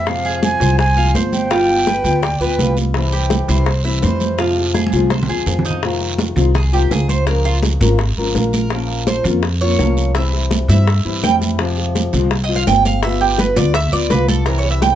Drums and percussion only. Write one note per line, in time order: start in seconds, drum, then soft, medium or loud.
0.07 high bongo medium
0.07 high conga soft
0.07 long guiro medium
0.25 high bongo soft
0.25 high conga soft
0.43 high bongo medium
0.43 high conga medium
0.43 short guiro medium
0.61 high bongo soft
0.61 high conga soft
0.61 short guiro medium
0.79 high bongo medium
0.79 high conga soft
0.79 long guiro medium
0.97 high conga soft
1.15 high bongo soft
1.15 low bongo medium
1.15 high conga medium
1.15 short guiro medium
1.33 high bongo soft
1.33 high conga medium
1.33 short guiro medium
1.51 high bongo medium
1.51 high conga soft
1.51 long guiro medium
1.69 high bongo soft
1.69 high conga soft
1.87 high bongo medium
1.87 high conga medium
1.87 short guiro medium
2.05 high bongo soft
2.05 high conga soft
2.05 short guiro medium
2.23 high bongo medium
2.23 high conga soft
2.23 long guiro medium
2.42 high conga soft
2.59 high bongo soft
2.59 low bongo medium
2.59 high conga medium
2.59 short guiro medium
2.77 high bongo soft
2.77 high conga medium
2.77 short guiro medium
2.94 high bongo medium
2.94 high conga soft
2.94 long guiro medium
3.13 high bongo soft
3.13 high conga soft
3.30 high bongo medium
3.30 high conga medium
3.30 short guiro medium
3.48 high bongo soft
3.48 high conga soft
3.48 short guiro medium
3.66 high bongo medium
3.66 high conga soft
3.66 long guiro medium
3.85 high conga soft
4.02 high bongo soft
4.02 low bongo medium
4.02 high conga medium
4.02 short guiro medium
4.20 high bongo soft
4.20 high conga medium
4.20 short guiro medium
4.38 high bongo medium
4.38 high conga soft
4.38 long guiro medium
4.57 high bongo soft
4.57 high conga soft
4.74 high bongo medium
4.74 high conga medium
4.74 short guiro medium
4.87 high conga medium
4.92 high bongo soft
4.92 short guiro medium
4.99 high conga medium
5.10 high bongo medium
5.10 high conga medium
5.10 long guiro medium
5.23 low conga loud
5.46 high bongo soft
5.46 low bongo medium
5.46 low conga medium
5.46 short guiro medium
5.59 low conga loud
5.65 high bongo soft
5.65 short guiro medium
5.70 low conga medium
5.83 high bongo medium
5.83 high conga soft
5.83 long guiro medium
6.01 high bongo soft
6.01 high conga soft
6.18 high bongo medium
6.18 high conga medium
6.18 short guiro medium
6.36 high bongo soft
6.36 low conga medium
6.36 short guiro medium
6.55 high bongo medium
6.55 high conga soft
6.55 low conga medium
6.55 long guiro medium
6.73 high conga soft
6.91 high bongo soft
6.91 low bongo medium
6.91 high conga medium
6.91 short guiro medium
7.09 high bongo soft
7.09 high conga medium
7.09 short guiro medium
7.27 high bongo medium
7.27 high conga soft
7.27 long guiro medium
7.45 high bongo soft
7.45 high conga soft
7.63 high bongo medium
7.63 high conga medium
7.63 short guiro medium
7.81 high bongo soft
7.81 high conga medium
7.81 short guiro medium
7.99 high bongo medium
7.99 high conga soft
7.99 long guiro medium
8.18 high conga soft
8.35 high bongo soft
8.35 low bongo medium
8.35 high conga medium
8.35 short guiro medium
8.53 high bongo soft
8.53 high conga medium
8.53 short guiro medium
8.70 high bongo medium
8.70 high conga soft
8.70 long guiro medium
8.88 high bongo soft
8.88 high conga soft
9.07 high bongo medium
9.07 high conga medium
9.07 short guiro medium
9.25 high bongo soft
9.25 low conga medium
9.25 short guiro medium
9.43 high bongo medium
9.43 high conga soft
9.43 long guiro medium
9.61 high conga soft
9.79 high bongo soft
9.79 low bongo medium
9.79 high conga medium
9.79 short guiro medium
9.97 high bongo soft
9.97 short guiro medium
10.15 high bongo medium
10.15 high conga soft
10.15 long guiro medium
10.33 high bongo soft
10.33 high conga soft
10.51 high bongo medium
10.51 high conga medium
10.51 short guiro medium
10.69 high bongo soft
10.69 high conga medium
10.69 short guiro medium
10.88 high bongo medium
10.88 high conga soft
10.88 long guiro medium
11.06 high conga soft
11.23 high bongo soft
11.23 low bongo medium
11.23 high conga medium
11.23 short guiro medium
11.41 high bongo soft
11.41 high conga medium
11.41 short guiro medium
11.59 high bongo medium
11.59 high conga soft
11.59 long guiro medium
11.78 high bongo soft
11.78 high conga soft
11.95 high bongo medium
11.95 high conga medium
11.95 short guiro medium
12.13 high bongo soft
12.13 low conga medium
12.13 short guiro medium
12.31 high bongo medium
12.31 high conga soft
12.31 long guiro medium
12.50 high conga soft
12.67 high bongo soft
12.67 low bongo medium
12.67 high conga medium
12.67 short guiro medium
12.85 high bongo soft
12.85 high conga medium
12.85 short guiro medium
13.03 high bongo medium
13.03 high conga soft
13.03 long guiro medium
13.20 high bongo soft
13.20 high conga soft
13.38 high bongo medium
13.38 high conga loud
13.38 short guiro medium
13.56 high bongo soft
13.56 high conga loud
13.56 short guiro medium
13.74 high bongo medium
13.74 high conga soft
13.74 long guiro medium
13.92 high conga soft
14.10 high bongo soft
14.10 low bongo medium
14.10 high conga medium
14.10 short guiro medium
14.28 high bongo soft
14.28 high conga medium
14.28 short guiro medium
14.46 high bongo medium
14.46 high conga soft
14.46 long guiro medium
14.64 high bongo soft
14.64 high conga soft
14.82 high bongo medium
14.82 high conga medium
14.82 short guiro medium